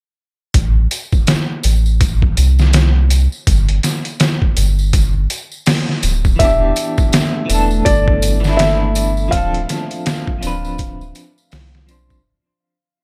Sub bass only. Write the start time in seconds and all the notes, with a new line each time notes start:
0.54 A1
1.64 A1
2.37 C2
3.47 G1
4.57 G1
6.03 D1
6.40 E1
7.50 E1
7.86 G1
9.33 D1
10.43 D1
11.53 C2
11.89 B1